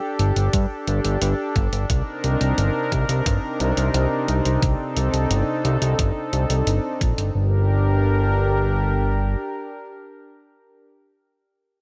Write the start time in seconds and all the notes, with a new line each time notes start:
Already playing: D4 G4 A4
0.19 G1, closed hi-hat
0.36 G1, closed hi-hat
0.53 G2, kick, closed hi-hat
0.87 G1, closed hi-hat
1.05 G1, closed hi-hat
1.22 G1, closed hi-hat
1.56 G1, kick, closed hi-hat
1.73 G1, closed hi-hat
1.90 C2 C3 C4 D#4 A#4, kick, closed hi-hat
2.24 C2, closed hi-hat
2.41 C2, closed hi-hat
2.58 G1, closed hi-hat
2.92 C2, kick, closed hi-hat
3.09 C2, closed hi-hat
3.26 G1, kick, closed hi-hat
3.60 C2, closed hi-hat
3.77 C2, closed hi-hat
3.94 C2, closed hi-hat
4.28 C2, closed hi-hat
4.45 C2, closed hi-hat
4.62 C2 A4, kick, closed hi-hat
4.97 C2, closed hi-hat
5.14 C2, closed hi-hat
5.31 G1, closed hi-hat
5.65 C2, closed hi-hat
5.82 C2, closed hi-hat
5.99 G1, kick, closed hi-hat
6.33 C2, closed hi-hat
6.50 C2, closed hi-hat
6.67 G1, closed hi-hat
7.01 A#1, kick, closed hi-hat
7.18 G1, closed hi-hat
7.35 G1 D4 G4 A#4